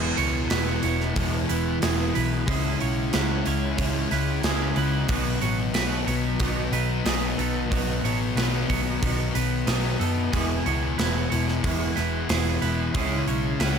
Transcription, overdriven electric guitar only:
Already playing: E3 G#3 B3 E4
0.17 G#3 B3 E4
0.51 E3 G#3 B3 E4
0.83 G#3 B3 E4
1.16 E3 G#3 B3 E4
1.49 G#3 B3 E4
1.82 E3 G#3 B3 E4
2.14 G#3 B3 E4
2.45 C#3 G#3 C#4 E4
2.77 G#3 C#4 E4
3.11 C#3 G#3 C#4 E4
3.44 G#3 C#4 E4
3.76 C#3 G#3 C#4 E4
4.09 G#3 C#4 E4
4.42 C#3 G#3 C#4 E4
4.75 G#3 C#4 E4
5.08 B2 D#3 F#3 B3 D#4
5.40 F#3 B3 D#4
5.73 D#3 F#3 B3 D#4
6.07 F#3 B3 D#4
6.39 B2 D#3 F#3 B3 D#4
6.73 F#3 B3 D#4
7.04 D#3 F#3 B3 D#4
7.38 F#3 B3 D#4
7.71 B2 D#3 F#3 B3 D#4
8.03 F#3 B3 D#4
8.36 D#3 F#3 B3 D#4
8.69 F#3 B3 D#4
9.01 B2 D#3 F#3 B3 D#4
9.34 F#3 B3 D#4
9.67 D#3 F#3 B3 D#4
10.00 F#3 B3 D#4
10.33 E3 G#3 B3 E4
10.67 G#3 B3 E4
10.99 E3 G#3 B3 E4
11.32 G#3 B3 E4
11.63 E3 G#3 B3 E4
11.97 G#3 B3 E4
12.29 E3 G#3 B3 E4
12.63 G#3 B3 E4
12.94 C#3 G#3 C#4 E4
13.27 G#3 C#4 E4
13.59 C#3 G#3 C#4 E4

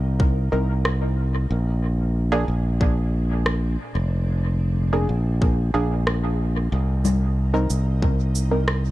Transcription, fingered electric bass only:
Already playing: C2
0.53 C2
1.51 A#1
2.48 A#1
3.95 F1
5.09 A#1
5.74 A#1
6.72 C2
7.70 C2

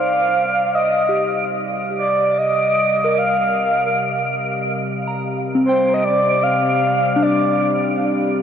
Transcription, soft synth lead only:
Already playing: F5
0.75 D#5
1.99 D5
2.38 D#5
3.18 F5
5.65 C5
5.94 D#5
6.04 D5
6.43 F5
7.23 D5

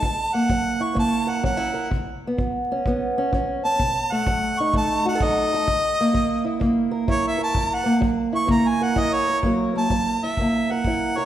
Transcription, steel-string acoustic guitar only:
0.05 F#2
0.34 A#3
0.50 F#3
0.80 E4
0.95 C#3 A#3
1.27 A#4
1.43 F#3 C#4
1.57 E4
1.74 A#4
1.91 C#3
2.27 B3
2.38 F3
2.72 C#4
2.87 G#2 B3
3.18 C#4
3.33 F3 C#4
3.65 C#4
3.79 B2
4.12 A3
4.27 F#3
4.60 D#4
4.74 F#2 A3
5.05 F#4
5.15 A4
5.22 F#3 D#4
5.54 A4
5.67 F#2
6.01 A#3
6.13 F#3
6.45 E4
6.60 C#3 A#3
6.91 A#4
7.08 F#3 E4
7.38 A#4
7.56 F#2
7.86 A#3
8.01 F#3
8.33 E4
8.47 C#3 A#3
8.81 A#4
8.96 F#3 E4
9.29 A#4
9.43 F#2 F#3 A#3 E4 A#4
9.75 A#3
9.91 F#3
10.24 E4
10.40 C#3 A#3
10.71 A#4
10.86 F#3 E4
11.18 A#4

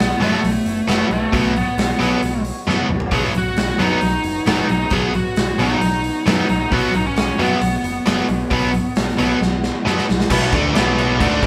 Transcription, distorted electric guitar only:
0.20 B2 F#3 B3
0.88 B2 F#3 B3
1.33 B2 F#3 B3
1.99 B2 F#3 B3
2.67 B2 F#3 B3
3.11 B2 F#3 B3
3.79 B2 F#3 B3
4.47 B2 F#3 B3
4.93 B2 F#3 B3
5.60 B2 F#3 B3
6.26 B2 F#3 B3
6.73 B2 F#3 B3
7.39 B2 F#3 B3
8.06 B2 F#3 B3
8.51 B2 F#3 B3
9.19 B2 F#3 B3
9.85 B2 F#3 B3
10.30 B2 F#3 B3
10.54 D3 A3 D4
10.75 B2 F#3 B3
11.20 D3 A3 D4

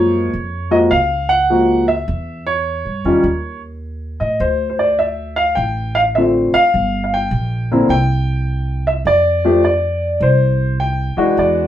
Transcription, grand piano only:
Already playing: F3 G#3 A#3 F4 C#5
0.71 F3 G#3 A#3 F#4 D#5
0.91 F5
1.29 F#5
1.50 F3 G#3 A#3 F#4
1.88 E5
2.47 C#5
3.05 D#3 G3 C#4 F4
4.20 D#5
4.40 C5
4.70 C5
4.79 D5
4.99 E5
5.36 F5
5.55 G5
5.95 F5
6.15 D3 A3 C4 F4 E5
6.54 F5
7.04 F5
7.14 G5
7.71 D3 A#3 C4 E4
7.90 G5
8.87 E5
9.07 D5
9.45 F3 A3 D4 G4
9.65 D5
10.23 C5
10.80 G5
11.17 E3 G#3 D4 F#4
11.39 D5

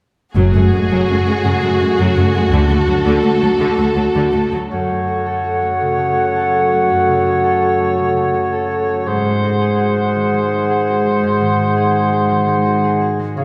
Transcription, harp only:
0.35 F#2
0.54 G#4
0.73 C#4
0.91 C#3
1.09 C#4
1.27 G#4
1.44 C#3
1.63 G#4
1.81 C#4
1.99 C#3
2.16 C#4
2.34 G#4
2.52 D3
2.69 A4
2.87 F#4
3.05 A3
3.23 F#4
3.42 A4
3.60 A3
3.78 A4
3.96 F#4
4.15 A3
4.34 F#4
4.52 A4
4.71 F#2
4.89 A3
5.08 F#4
5.26 A4
5.44 F#4
5.62 A3
5.81 C#3
5.99 A3
6.17 F#4
6.36 A4
6.54 F#4
6.72 A3
6.90 F#2
7.08 C#3
7.26 F#4
7.44 A4
7.62 F#4
7.80 A3
7.98 C#3
8.16 A3
8.34 F#4
8.53 A4
8.70 F#4
8.89 A3
9.07 G#2
9.25 G#3
9.43 F#4
9.61 G#4
9.79 F#4
9.97 G#3
10.15 D#3
10.34 G#3
10.51 F#4
10.70 G#4
10.88 F#4
11.06 G#3
11.23 G#2
11.41 D#3
11.59 F#4
11.77 G#4
11.95 F#4
12.13 G#3
12.31 D#3
12.48 G#3
12.65 F#4
12.84 G#4
13.01 F#4
13.20 G#3
13.37 C#3

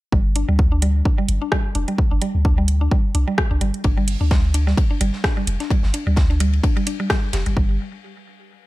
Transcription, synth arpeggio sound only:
0.13 G3
0.36 D4
0.49 G3
0.72 D4
0.82 G3
1.05 D4
1.18 G3
1.42 D4
1.52 G3
1.75 D4
1.88 G3
2.11 D4
2.22 G3
2.45 D4
2.58 G3
2.81 D4
2.91 G3
3.15 D4
3.28 G3
3.51 D4
3.61 G3
3.85 D4
3.97 G3
4.21 D4
4.31 G3
4.54 D4
4.67 G3
4.91 D4
5.01 G3
5.24 D4
5.37 G3
5.60 D4
5.71 G3
5.94 D4
6.07 G3
6.30 D4
6.40 G3
6.64 D4
6.77 G3
6.87 D4
7.00 G3
7.10 G3
7.34 G4
7.46 G3
7.57 G3

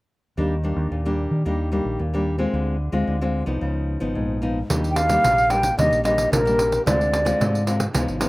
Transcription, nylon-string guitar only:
0.37 D#3 G3 A#3 D4
0.64 G3 A#3 D4
0.92 A#2
1.05 G3 A#3 D4
1.45 D#3 G3 A#3 D4
1.72 G3 A#3 D4
1.99 A#2
2.14 G3 A#3 D4
2.38 G#3 C4 F4
2.54 D3
2.92 G#3 C4 F4
3.07 D3
3.21 G#3 C4 F4
3.46 F3 B3 D#4
3.61 C#3
4.00 F3 B3 D#4
4.15 G#2
4.42 F3 B3 D#4
4.70 D#3 G3 A#3 D4
5.09 G3 A#3 D4
5.24 A#2
5.50 G3 A#3 D4
5.77 D#3 G3 A#3 D4
6.04 G3 A#3 D4
6.32 A#2
6.45 G3 A#3 D4
6.86 D3 G#3 C4 F4
7.25 G#3 C4 F4
7.40 D3
7.67 G#3 C4 F4
7.93 C#3 F3 B3 D#4
8.20 F3 B3 D#4

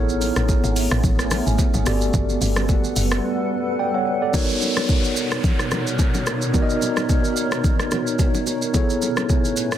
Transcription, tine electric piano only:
Already playing: B3 E4 G#4 A4 C#5
1.85 B3 F#4 G4 A4 D5
3.79 D5 G5
3.94 C#5 F#5
4.22 A4 D5
4.33 B3 D#4 F#4 A#4 C#5
6.53 B3 D#4 F#4 A#4 D5
6.62 D#5
7.92 B3 D#4 F#4 A#4 C#5
8.74 B3 E4 G#4 A4 C#5

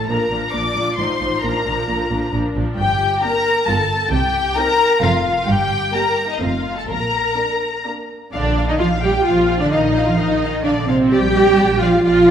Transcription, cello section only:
0.08 A#2
0.30 A#2
0.53 A#2
0.75 A#2
0.98 A2
1.21 A2
1.43 A#2
1.66 A#2
1.88 A#2
2.10 A#2
2.33 A#2
2.55 A#2
2.77 G2
3.67 G2
4.12 C3
5.02 F2
5.48 G2
6.41 F2
6.89 A#2
8.34 D3
8.68 D#3
8.80 F3
9.04 G3
9.27 F3
9.61 D3
9.72 D#3
10.07 F3
10.18 D#3
10.64 D3
10.88 C3
11.12 G3
11.81 F3
12.03 F3

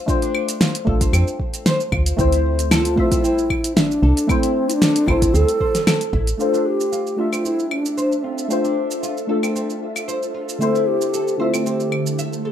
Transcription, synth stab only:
Already playing: A3 D4 F4 E5
0.06 A3 D4 F4 C5
0.85 A3 D4 F4
0.89 A4
2.16 A3 C4 E4
2.20 C5
2.96 A3 C4 E4 E5
4.27 A3 C4 E4 C5
5.06 A3 C4 E4 A4
6.37 A3 D4 F4
6.42 C5
7.17 A3 D4 F4
7.21 E5
8.48 A3 D4 F4
8.52 C5
9.27 A3 D4 F4
9.31 A4
10.59 D3 A3 C4 E4 C5
11.38 D3 A3 C4 E4 E5

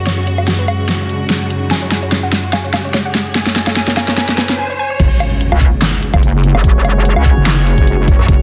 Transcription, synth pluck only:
0.07 C#5
0.18 F#4
0.27 C#5
0.38 F#4
0.48 F#4
0.59 B4
1.71 G#5
1.82 C#5
1.91 G#5
2.03 C#5
2.12 C#5
2.23 F#5
2.53 G#5
2.64 C#5
2.74 G#5
2.85 C#5
2.94 C#5
3.05 F#5
3.35 G#5
3.46 C#5
3.56 G#5
3.67 C#5
3.76 G#5
3.88 C#5
3.97 G#5
4.08 C#5
4.17 G#5
4.29 C#5
4.38 G#5
4.49 C#5
4.59 G#5
4.70 C#5
4.79 G#5
4.90 C#5

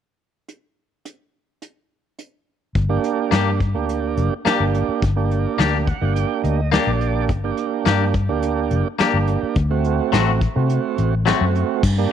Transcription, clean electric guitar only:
3.31 A#3 D4 G4
4.45 A#3 D4 G4
5.59 A#3 D4 G4
6.72 A#3 D4 G4
7.86 A#3 D4 G4
8.99 A#3 D4 G4
10.12 F#3 A3 C4 F#4
11.26 F#3 A3 C4 F#4

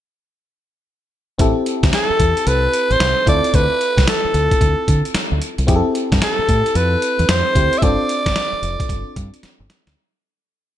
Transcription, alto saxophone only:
1.95 A4
2.48 B4
2.92 C5
3.29 D5
3.55 B4
4.09 A4
6.23 A4
6.77 B4
7.30 C5
7.78 E5
7.83 D5

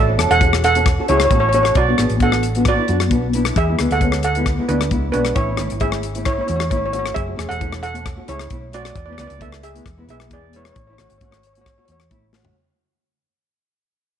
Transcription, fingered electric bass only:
Already playing: A1
0.18 E1
0.30 E1
1.09 C#2
1.31 A1
1.76 B1
1.98 A1
2.10 A1
2.89 F#2
3.11 B1
3.56 E2
3.79 D2
3.90 D2
4.69 D2
4.91 C#2
5.15 B1
5.36 A1
5.59 G#1
5.72 G#1
6.49 E2
6.71 G#1
7.16 F#1
7.38 E1
7.50 E1
8.28 C#2
8.51 B1
8.95 E1
9.19 C#2
9.31 C#2
9.86 E1
10.09 B1
10.31 E1
10.76 A1
10.99 G#1
11.11 G#1
11.89 E2
12.11 A1

